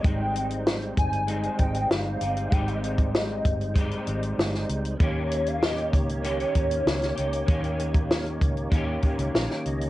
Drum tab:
HH |x-xx-xxxxxxx--xx|xxxx--xxxxxx--xx|x-xx-xxxxxxx-xxx|xxxx-xxxx-xx--xx|
SD |----o-------o---|----o-------oo--|----o-------oo--|----o-------oo--|
BD |o-----o---o-----|o--o--o-o-------|o-----o---o-----|o--o--o-o-o-----|